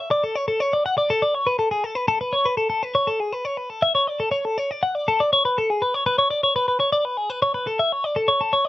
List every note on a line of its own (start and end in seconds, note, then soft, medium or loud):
0.00 0.10 E5 medium
0.11 0.23 D5 loud
0.24 0.35 A4 medium
0.35 0.48 C#5 medium
0.48 0.60 A4 medium
0.60 0.73 C#5 medium
0.73 0.85 D5 medium
0.86 0.97 F#5 medium
0.98 1.10 D5 medium
1.10 1.22 A4 loud
1.22 1.35 D5 medium
1.35 1.47 C#5 medium
1.47 1.58 B4 medium
1.59 1.71 A4 medium
1.71 1.84 G#4 medium
1.84 1.95 A4 medium
1.95 2.08 B4 medium
2.08 2.21 A4 medium
2.21 2.34 B4 medium
2.33 2.46 C#5 medium
2.46 2.57 B4 medium
2.57 2.68 A4 medium
2.70 2.83 A4 medium
2.83 2.95 B4 medium
2.95 3.08 C#5 medium
3.07 3.20 A4 medium
3.20 3.33 G#4 medium
3.33 3.45 B4 medium
3.45 3.57 C#5 medium
3.57 3.70 B4 medium
3.70 3.82 A4 medium
3.82 3.95 E5 medium
3.95 4.07 C#5 medium
4.07 4.20 D5 medium
4.20 4.31 A4 medium
4.31 4.45 C#5 medium
4.45 4.58 A4 medium
4.58 4.71 C#5 medium
4.71 4.82 D5 medium
4.83 4.95 F#5 medium
4.95 5.07 D5 medium
5.08 5.20 A4 medium
5.20 5.32 D5 medium
5.33 5.44 C#5 medium
5.45 5.57 B4 medium
5.58 5.70 A4 loud
5.70 5.82 G#4 medium
5.82 5.94 B4 medium
5.94 6.06 C#5 medium
6.06 6.18 B4 medium
6.18 6.30 C#5 medium
6.30 6.43 D5 medium
6.43 6.55 C#5 medium
6.56 6.67 B4 medium
6.68 6.79 B4 medium
6.80 6.92 C#5 medium
6.93 7.05 D5 medium
7.05 7.17 B4 medium
7.17 7.30 G#4 medium
7.30 7.42 B4 medium
7.42 7.54 C#5 medium
7.54 7.67 B4 medium
7.67 7.79 A4 medium
7.79 7.92 E5 medium
7.92 8.04 C#5 medium
8.04 8.16 D5 medium
8.16 8.28 A4 medium
8.28 8.41 C#5 medium
8.41 8.53 A4 medium
8.53 8.65 C#5 medium
8.65 8.69 D5 medium